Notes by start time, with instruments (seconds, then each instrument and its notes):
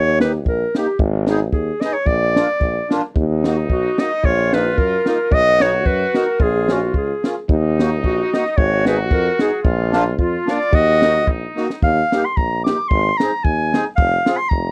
Already playing: tuba D#2, clarinet C#5
0.20 accordion A#3 D#4 G4, clarinet B4, snare
0.45 tuba A#1, clarinet A#4, kick
0.75 accordion A#3 D#4 G4, clarinet G4, snare
0.99 tuba G#1, kick
1.27 accordion B3 D#4 G#4, snare
1.52 tuba D#2, clarinet G#4, kick
1.81 accordion B3 D#4 G#4, clarinet D#5, snare
1.93 clarinet C#5
2.06 tuba A#1, clarinet D5, kick
2.35 accordion A#3 D4 F4, snare
2.60 tuba A#1, kick
2.89 accordion A#3 D4 F4, snare
3.15 tuba D#2, trumpet D#4, kick
3.44 accordion A#3 D#4 F#4, snare
3.69 tuba B1, clarinet F#4, kick
3.98 accordion A#3 D#4 F#4, clarinet D#5, snare
4.23 tuba A#1, trumpet F4, clarinet C#5, kick
4.53 accordion A#3 D#4 F4, clarinet B4, snare
4.78 tuba F#2, clarinet A#4, kick
5.06 accordion A#3 D#4 F4, clarinet A#4, snare
5.31 tuba B1, trumpet F#4, clarinet D#5, kick
5.60 accordion B3 D#4 F#4, clarinet C#5, snare
5.86 tuba F#2, clarinet B4, kick
6.13 accordion B3 D#4 F#4, clarinet A#4, snare
6.40 tuba A#1, trumpet F4, clarinet G#4, kick
6.67 accordion A#3 C#4 F4, snare
6.73 clarinet F#4
6.94 tuba C#2, clarinet G#4, kick
7.22 accordion A#3 C#4 F4, snare
7.49 tuba D#2, trumpet D#4, kick
7.78 accordion A#3 D#4 F#4, snare
8.04 tuba A#1, clarinet F#4, kick
8.33 accordion A#3 D#4 F#4, clarinet D#5, snare
8.45 snare
8.57 tuba G#1, trumpet F#4, clarinet C#5, kick
8.85 accordion B3 D#4 G#4, clarinet B4, snare
9.11 tuba F2, clarinet A#4, kick
9.39 accordion B3 D#4 G#4, clarinet G#4, snare
9.63 tuba A#1, trumpet F4, kick
9.92 accordion A#3 D4 F4, snare
10.18 tuba F2, trumpet F4, clarinet F4, kick
10.46 accordion A#3 D4 F4, snare
10.51 clarinet D5
10.61 snare
10.72 tuba D#2, trumpet F#4, clarinet D#5, kick
11.00 accordion A#3 D#4 F#4, snare
11.27 tuba A#1, trumpet D#4, kick
11.55 accordion A#3 D#4 F#4, snare
11.70 snare
11.82 tuba D#2, clarinet F5, kick
12.12 accordion A#3 D#4 G4, snare, hi-hat pedal
12.25 clarinet C6
12.37 tuba A#1, clarinet A#5, kick
12.64 accordion A#3 D#4 G4, clarinet D6, snare, hi-hat pedal
12.88 tuba G#1, clarinet C6, kick
13.18 accordion C4 D#4 G#4, clarinet A#5, snare, hi-hat pedal
13.44 tuba D#2, clarinet G#5, kick
13.72 accordion C4 D#4 G#4, snare, hi-hat pedal
13.96 tuba F1, clarinet F5, kick
14.25 accordion C4 F4 G#4, snare, hi-hat pedal
14.37 clarinet C6
14.49 tuba F1, clarinet A#5, kick